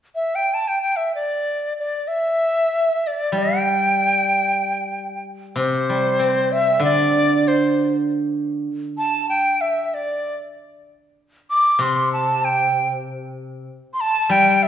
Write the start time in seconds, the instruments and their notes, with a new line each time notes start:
0.15 dizi E5
0.35 dizi G5
0.54 dizi A5
0.68 dizi G5
0.83 dizi G5
0.96 dizi E5
1.15 dizi D5
1.79 dizi D5
2.08 dizi E5
3.07 dizi D5
3.32 guzheng G3
3.38 dizi G5
5.56 guzheng C3, dizi C5
5.89 guzheng G3
6.19 guzheng C4
6.52 dizi E5
6.80 guzheng D3
6.84 dizi D5
7.48 dizi C5
8.98 dizi A5
9.29 dizi G5
9.61 dizi E5
9.85 dizi E5
9.94 dizi D5
11.50 dizi D6
11.79 guzheng C3, dizi C6
12.13 dizi A5
12.45 dizi G5
13.94 dizi C6
14.01 dizi A5
14.30 guzheng G3, dizi G5
14.63 dizi E5